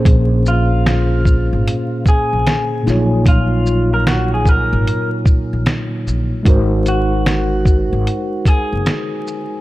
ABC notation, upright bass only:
X:1
M:4/4
L:1/16
Q:"Swing 16ths" 1/4=75
K:Ebdor
V:1 name="Upright bass" clef=bass
B,,,6- B,,, A,,, z3 B,,, z2 B,,,2- | B,,,6- B,,, A,,, z3 B,,, z2 B,,, z | A,,,6- A,,, A,,, z3 G,,, z4 |]